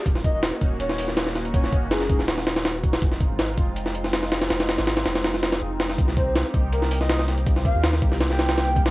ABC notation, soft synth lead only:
X:1
M:4/4
L:1/16
Q:1/4=162
K:Cm
V:1 name="Soft synth lead"
z2 e e z4 _d3 z4 z | _d2 z2 A3 z8 z | z16 | z16 |
z2 c c z4 B3 e2 z3 | z2 f2 z4 z g6 z |]